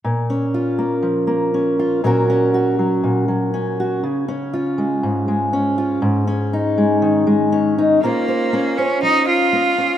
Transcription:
<<
  \new Staff \with { instrumentName = "Cello" } { \time 4/4 \key bes \minor \tempo 4 = 120 r1 | r1 | r1 | r1 |
bes4. des'8 ees'8 f'4. | }
  \new Staff \with { instrumentName = "Steel-string acoustic guitar" } { \time 4/4 \key bes \minor << { r8 des'8 f'2 des'8 f'8 | <ges des' ges' bes'>8 des'8 ges'2 des'8 ges'8 | r8 des'8 f'2 des'8 f'8 | r8 des'8 ees'2 des'8 ees'8 |
<bes des' f' c''>8 c''8 des'8 c''2 des'8 | } \\ { bes,4. bes8 f8 bes4. | bes,4. ges8 bes,8 ges4. | des4. aes8 aes,8 aes4. | aes,4. aes8 ees8 aes4. |
bes,4 bes4 f4 bes4 | } >> }
>>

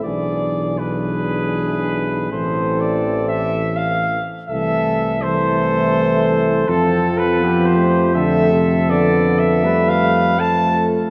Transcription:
<<
  \new Staff \with { instrumentName = "Cornet" } { \time 3/4 \key a \minor \tempo 4 = 81 d''4 b'2 | \tuplet 3/2 { c''4 d''8~ d''8 e''4 } f''8 r8 | e''4 c''2 | \key f \lydian \tuplet 3/2 { a'4 b'8~ b'8 c''4 } e''4 |
\tuplet 3/2 { d''4 e''8~ e''8 f''4 } a''8 r8 | }
  \new Staff \with { instrumentName = "Flugelhorn" } { \time 3/4 \key a \minor gis'4 gis'2 | a'2~ a'8 r8 | a'4 a'2 | \key f \lydian a'4 g'4 a'4~ |
a'4 b'4 a'4 | }
  \new Staff \with { instrumentName = "Euphonium" } { \time 3/4 \key a \minor d'4 d'2 | c'2~ c'8 r8 | a4 a2 | \key f \lydian c'4 b8 a8 a4 |
b4 a4 a4 | }
  \new Staff \with { instrumentName = "Euphonium" } { \clef bass \time 3/4 \key a \minor e4 e2 | e2~ e8 r8 | e4 e2 | \key f \lydian f2 d8 c8 |
d4 g4 f4 | }
  \new Staff \with { instrumentName = "Tuba" } { \clef bass \time 3/4 \key a \minor b,,2. | a,,2~ a,,8 r8 | c,2. | \key f \lydian f,2.~ |
f,2. | }
>>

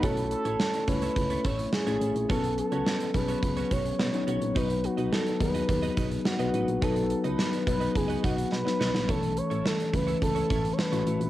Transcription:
<<
  \new Staff \with { instrumentName = "Analog synth lead" } { \time 4/4 \key b \mixolydian \tempo 4 = 106 a'8 a'4 b'4 cis''8 gis'4 | a'8 a'4 b'4 cis''8 cis''4 | b'8 fis'8 a'8 b'4. fis'4 | a'8 a'16 b'8. b'8 gis'8 fis'8 b'4 |
a'8 cis''8 a'8 b'8 a'8 a'16. cis''32 b'4 | }
  \new Staff \with { instrumentName = "Clean electric guitar" } { \time 4/4 \key b \mixolydian <cis' e' a' cis''>16 r8 <cis' e' a' cis''>16 <cis' e' a' cis''>16 r8 <cis' e' a' cis''>16 r16 <cis' e' a' cis''>16 <cis' e' a' cis''>16 r8 <cis' e' a' cis''>16 <cis' e' a' cis''>16 r16 | <b cis' fis' cis''>16 r8 <b cis' fis' cis''>16 <b cis' fis' cis''>16 r8 <b cis' fis' cis''>16 r16 <b cis' fis' cis''>16 <b cis' fis' cis''>16 r8. <b cis' fis' cis''>16 r16 | <dis' fis' b' dis''>16 r8 <dis' fis' b' dis''>16 <dis' fis' b' dis''>16 r8 <dis' fis' b' dis''>16 r16 <dis' fis' b' dis''>16 <dis' fis' b' dis''>16 r8 <dis' fis' b' dis''>16 <dis' fis' b' dis''>16 r16 | <dis' fis' b' dis''>16 r8 <dis' fis' b' dis''>16 <dis' fis' b' dis''>16 r8 <dis' fis' b' dis''>16 r16 <dis' fis' b' dis''>16 <dis' fis' b' dis''>16 r8. <dis' fis' b' dis''>16 r16 |
<cis' e' a' cis''>16 r8 <cis' e' a' cis''>16 <cis' e' a' cis''>16 r8 <cis' e' a' cis''>16 r16 <cis' e' a' cis''>16 <cis' e' a' cis''>16 r8 <cis' e' a' cis''>16 <cis' e' a' cis''>16 r16 | }
  \new Staff \with { instrumentName = "Tine electric piano" } { \time 4/4 \key b \mixolydian <a cis' e' cis''>4 r8 <a cis' e' cis''>4 r8. <a cis' e' gis'>8 r16 | <fis b cis' b'>4 r8 <fis b cis' gis'>4 r8. <fis b cis' dis'>8 r16 | <fis b dis' b'>4 r8 <fis b dis' gis'>4 r8. <fis b dis' b'>8 r16 | <fis b dis' b'>4 r8 <fis b dis' b'>4 r8. <fis b dis' b'>8 r16 |
<e a cis' a'>4 r8 <e a cis' b'>4 r8. <e a cis' fis'>8 r16 | }
  \new Staff \with { instrumentName = "FM bass" } { \clef bass \time 4/4 \key b \mixolydian b,,8. a,,16 r8 cis,8 cis,8 a,,8 r16 a,,16 a,,16 ais,,16 | b,,8. cis,16 r8 b,,8 cis,8 b,,8 b,16 r16 b,,16 ais,,16 | b,,8. b,,16 r8 dis,8 dis,8 b,,8 r16 b,,16 a,,16 ais,,16 | b,,8. cis,16 r8 b,,8 cis,8 b,,8 b,16 r16 b,,16 ais,,16 |
b,,8. a,,16 r8 cis,8 cis,8 a,,8 r16 a,,16 a,,16 ais,,16 | }
  \new DrumStaff \with { instrumentName = "Drums" } \drummode { \time 4/4 <hh bd>16 hh16 hh16 hh16 sn16 hh16 <hh bd>16 hh16 <hh bd>16 hh16 <hh bd>16 hh16 sn16 hh16 hh16 hh16 | <hh bd>16 hh16 hh16 hh16 sn16 hh16 <hh bd>16 hh16 <hh bd>16 hh16 <hh bd>16 hh16 sn16 hh16 hh16 hh16 | <hh bd>16 hh16 hh16 hh16 sn16 hh16 <hh bd>16 hh16 <hh bd>16 hh16 <hh bd>16 hh16 sn16 hh16 hh16 hh16 | <hh bd>16 hh16 hh16 hh16 sn16 hh16 <hh bd>16 hh16 <hh bd>16 hh16 <hh bd>16 hh16 sn16 sn16 sn16 sn16 |
<hh bd>16 hh16 hh16 hh16 sn16 hh16 <hh bd>16 hh16 <hh bd>16 hh16 <hh bd>16 hh16 sn16 hh16 hh16 hh16 | }
>>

